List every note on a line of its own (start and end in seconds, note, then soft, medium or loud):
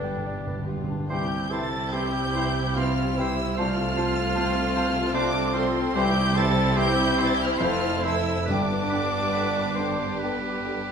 0.00 0.85 G1 medium
0.00 0.85 G2 medium
0.00 1.05 G2 medium
0.00 0.08 G2 medium
0.00 0.67 D3 soft
0.00 1.11 D3 soft
0.00 0.86 G3 medium
0.00 0.86 B3 medium
0.00 1.11 B3 soft
0.00 0.67 D4 soft
0.00 0.90 D4 soft
0.00 1.11 E4 soft
0.00 0.66 G4 soft
0.00 0.26 A4 medium
0.00 0.48 B4 medium
0.00 0.63 B4 medium
0.00 0.26 D5 medium
0.00 1.11 E5 medium
0.04 0.38 G5 medium
0.09 0.16 G2 medium
0.17 0.23 G2 soft
0.24 0.30 G2 medium
0.24 0.68 G4 medium
0.24 0.59 D5 medium
0.31 0.38 G2 medium
0.39 0.46 G2 medium
0.47 0.52 G2 medium
0.47 0.81 B4 soft
0.54 0.61 G2 medium
0.62 0.68 G2 medium
0.66 0.76 G2 medium
0.66 1.09 F4 medium
0.66 1.00 G4 soft
0.77 0.82 G2 medium
0.83 0.90 G2 medium
0.90 0.99 G2 medium
0.90 1.10 D4 soft
1.00 1.06 G2 medium
1.08 5.92 C2 medium
1.08 3.55 C2 medium
1.08 5.92 C3 medium
1.08 1.25 E3 medium
1.08 3.54 G3 medium
1.08 3.53 C4 medium
1.08 3.54 E4 medium
1.08 1.53 G4 medium
1.08 3.54 G4 medium
1.08 5.92 C5 medium
1.08 1.26 C5 medium
1.08 1.18 G5 medium
1.08 1.49 G6 medium
1.50 1.66 E3 medium
1.50 2.18 E4 medium
1.50 1.94 A4 medium
1.50 1.68 C5 medium
1.50 1.61 G5 medium
1.50 1.93 A6 medium
1.92 2.10 E3 medium
1.92 2.60 C4 medium
1.92 2.77 G4 medium
1.92 2.08 C5 medium
1.92 2.02 G5 medium
1.92 2.77 G6 medium
2.34 2.51 E3 medium
2.34 3.01 E4 medium
2.34 2.51 C5 medium
2.34 2.44 G5 medium
2.75 2.92 E3 medium
2.75 3.42 C4 medium
2.75 3.19 F4 medium
2.75 2.93 C5 medium
2.75 2.85 G5 medium
2.75 3.18 F6 medium
3.17 3.34 E3 medium
3.17 3.57 E4 medium
3.17 3.59 G4 medium
3.17 3.36 C5 medium
3.17 3.27 G5 medium
3.17 3.59 E6 medium
3.57 5.93 C2 medium
3.57 3.74 F3 medium
3.57 5.93 A3 medium
3.57 8.48 C4 medium
3.57 5.17 F4 medium
3.57 5.93 F4 medium
3.57 5.92 A4 medium
3.57 3.73 C5 medium
3.57 3.67 A5 medium
3.57 5.13 F6 loud
3.97 4.13 F3 medium
3.97 4.61 F4 medium
3.97 4.13 C5 medium
3.97 4.06 A5 medium
4.35 4.53 F3 medium
4.35 5.00 C4 medium
4.35 4.52 C5 medium
4.35 4.44 A5 medium
4.75 4.91 F3 medium
4.75 5.40 F4 medium
4.75 4.91 C5 medium
4.75 4.85 A5 medium
5.14 5.31 F3 medium
5.14 5.79 C4 medium
5.14 5.55 D4 medium
5.14 5.30 C5 medium
5.14 5.23 A5 medium
5.14 5.56 D6 loud
5.53 5.72 F3 medium
5.53 5.96 C4 medium
5.53 5.96 A4 medium
5.53 5.69 C5 medium
5.53 5.63 A5 medium
5.57 5.97 C6 medium
5.94 7.55 C2 medium
5.94 7.57 C2 medium
5.94 7.57 C3 medium
5.94 6.13 E3 medium
5.94 7.56 G3 medium
5.94 8.33 E4 medium
5.94 8.48 E4 medium
5.94 6.37 G4 loud
5.94 7.57 G4 medium
5.94 6.10 C5 medium
5.94 8.44 C5 medium
5.94 6.04 G5 medium
5.94 6.37 G6 loud
6.34 6.53 E3 medium
6.34 7.02 E4 medium
6.34 6.79 A4 medium
6.34 6.50 C5 medium
6.34 6.46 G5 medium
6.39 6.79 A6 loud
6.75 6.93 E3 medium
6.75 7.43 C4 medium
6.75 7.32 G4 loud
6.75 6.91 C5 medium
6.75 6.87 G5 medium
6.75 7.23 G6 loud
7.18 7.35 E3 medium
7.18 7.61 E4 medium
7.18 7.34 C5 medium
7.18 7.29 G5 medium
7.26 7.34 A6 loud
7.34 7.42 G6 loud
7.43 7.51 F6 medium
7.53 7.73 C5 medium
7.53 7.61 G6 medium
7.59 8.46 F1 medium
7.59 8.46 F2 medium
7.59 7.77 E3 medium
7.59 8.33 A3 medium
7.59 8.05 F4 medium
7.59 8.48 A4 medium
7.59 7.71 A5 medium
7.59 8.04 F6 loud
8.02 8.21 E3 medium
8.02 8.48 E4 medium
8.02 8.45 E4 medium
8.02 8.45 A4 medium
8.02 8.18 C5 medium
8.02 8.15 A5 medium
8.06 8.48 E6 medium
8.45 10.88 G1 medium
8.45 10.88 G2 medium
8.45 10.92 G2 medium
8.45 9.75 G2 medium
8.45 10.61 D4 medium
8.45 10.92 G4 medium
8.45 8.61 B4 medium
8.45 10.83 B4 medium
8.45 10.66 D6 medium
8.50 8.66 D3 medium
8.50 10.92 G3 medium
8.50 10.72 B3 medium
8.50 10.85 D4 medium
8.50 10.77 D4 medium
8.50 8.60 G5 medium
8.89 9.08 D3 medium
8.89 9.61 D4 medium
8.89 9.05 B4 medium
8.94 9.03 G5 medium
9.33 9.51 D3 medium
9.33 10.05 B3 medium
9.33 9.77 B4 medium
9.38 9.47 G5 medium
9.75 9.95 D3 medium
9.75 10.47 D4 medium
9.75 10.20 C5 medium
9.82 9.91 G5 medium
10.19 10.92 B4 medium
10.23 10.39 D3 medium
10.23 10.92 B3 medium
10.23 10.33 G5 medium
10.65 10.81 D3 medium
10.65 10.92 G4 medium
10.65 10.77 G5 medium